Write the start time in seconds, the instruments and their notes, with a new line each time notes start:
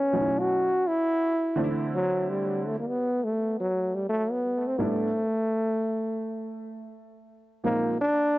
Already playing: trombone C#4
0.13 upright piano B2 F#3 A3 C#4 D#4
0.21 upright piano E4
0.39 trombone F#4
0.87 trombone E4
1.56 upright piano D3 E3 A3 C4 D4
1.64 upright piano E4
1.94 trombone F#3
2.30 trombone G3
2.66 trombone A3
2.80 trombone A#3
2.88 trombone B3
3.24 trombone A3
3.60 trombone F#3
3.95 trombone G3
4.09 trombone A3
4.31 trombone B3
4.68 trombone C4
4.78 upright piano A2 G3 B3 D4 E4, trombone A3
7.64 upright piano A#2 F3 G#3 C4 D#4, trombone A#3
8.01 trombone D4